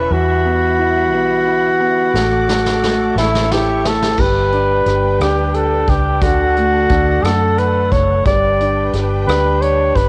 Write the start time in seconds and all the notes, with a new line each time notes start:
Already playing: C#3 C#4 E4 B4 E5
0.10 E2 E3 G3 F#4 F#5 B5
0.45 B3
0.79 E4
1.12 B1 B3
1.47 E4
1.81 B3
2.14 A1 A3 A4 D5 D6, snare
2.49 A3, snare
2.66 snare
2.84 A3, snare
3.15 A1 A3 E4 C#5 E5 C#6, snare
3.35 snare
3.51 E4 G4, snare
3.85 A3 A4, snare
4.02 snare
4.18 G1 G3 D4 B4 G5, kick, crash
4.52 D4, closed hi-hat
4.86 G1 G3, cross-stick, closed hi-hat
5.20 D2 D4 G4, cross-stick, closed hi-hat
5.54 A4, closed hi-hat
5.88 C#2 G4, kick, closed hi-hat
6.22 D2 D3 F#4 A4 F#5, kick, closed hi-hat
6.56 A3, closed hi-hat
6.89 D2 D4, kick, cross-stick, closed hi-hat
7.23 F#2 A3 A4, cross-stick, closed hi-hat
7.58 B4, closed hi-hat
7.92 F#1 C#5, kick, closed hi-hat
8.25 G1 G3 D4 B4 D5 G5, kick, closed hi-hat
8.60 D4, closed hi-hat
8.93 G1 G4, cross-stick, closed hi-hat
9.27 D2 D4 B4, cross-stick, closed hi-hat
9.62 C#5, closed hi-hat
9.96 G1 B4, kick, closed hi-hat